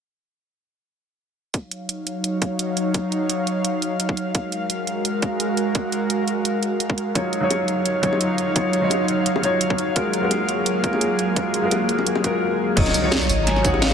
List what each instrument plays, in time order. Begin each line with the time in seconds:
1.54 analog synth pad F#3 D#4 C#5 F5, kick, closed hi-hat
1.71 closed hi-hat
1.89 closed hi-hat
2.07 closed hi-hat
2.24 closed hi-hat
2.42 kick, closed hi-hat
2.59 closed hi-hat
2.77 closed hi-hat
2.94 kick, closed hi-hat
3.12 closed hi-hat
3.30 closed hi-hat
3.47 closed hi-hat
3.65 closed hi-hat
3.82 closed hi-hat
4.00 closed hi-hat
4.09 kick
4.17 closed hi-hat
4.35 analog synth pad G#3 F#4 A#4, kick, closed hi-hat
4.52 closed hi-hat
4.70 closed hi-hat
4.87 closed hi-hat
5.05 closed hi-hat
5.22 kick, closed hi-hat
5.40 closed hi-hat
5.57 closed hi-hat
5.75 kick, closed hi-hat
5.92 closed hi-hat
6.10 closed hi-hat
6.28 closed hi-hat
6.45 closed hi-hat
6.63 closed hi-hat
6.80 closed hi-hat
6.90 kick
6.98 closed hi-hat
7.15 grand piano F#3 D#4 F4 C#5, analog synth pad F#3 D#4 C#5 F5, kick, closed hi-hat
7.33 closed hi-hat
7.41 grand piano F#3 D#4 F4 C#5
7.50 closed hi-hat, high bongo
7.68 closed hi-hat
7.86 closed hi-hat
8.02 grand piano F#3 D#4 F4 C#5, kick, closed hi-hat
8.13 high bongo
8.21 closed hi-hat
8.38 closed hi-hat
8.55 grand piano F#3 D#4 F4 C#5, kick, closed hi-hat
8.73 closed hi-hat
8.81 grand piano F#3 D#4 F4 C#5
8.90 closed hi-hat, high bongo
9.08 closed hi-hat
9.26 closed hi-hat
9.36 high bongo
9.42 grand piano F#3 D#4 F4 C#5, closed hi-hat
9.61 closed hi-hat
9.70 kick
9.78 closed hi-hat
9.95 grand piano G#3 F4 F#4 A#4, analog synth pad A#3 G#4, kick, closed hi-hat
10.13 closed hi-hat
10.21 grand piano G#3 F4 F#4 A#4
10.31 closed hi-hat, high bongo
10.49 closed hi-hat
10.66 closed hi-hat
10.82 grand piano G#3 F4 F#4 A#4, kick, closed hi-hat
10.93 high bongo
11.01 closed hi-hat
11.19 closed hi-hat
11.36 grand piano G#3 F4 F#4 A#4, kick, closed hi-hat
11.54 closed hi-hat
11.62 grand piano G#3 F4 F#4 A#4
11.71 closed hi-hat, high bongo
11.89 closed hi-hat
11.99 high bongo
12.07 closed hi-hat
12.16 high bongo
12.22 grand piano G#3 F4 F#4 A#4, kick, closed hi-hat
12.76 sub bass D#1, grand piano F#3 D#4 F4 C#5, analog synth pad F#3 C#5 D#5, vibraphone D#5, kick, closed hi-hat, crash, impact
12.86 snare, tambourine
12.94 closed hi-hat, tambourine
13.02 grand piano F#3 D#4 F4 C#5, vibraphone C#5
13.11 snare, closed hi-hat, high bongo
13.21 tambourine
13.29 sub bass G#1, vibraphone D#5, open hi-hat, tambourine
13.43 vibraphone A#5
13.47 vibraphone G#5, snare, closed hi-hat
13.56 snare
13.63 grand piano F#3 D#4 F4 C#5, vibraphone F#5, kick, closed hi-hat, tambourine
13.74 high bongo
13.82 vibraphone F5, snare, closed hi-hat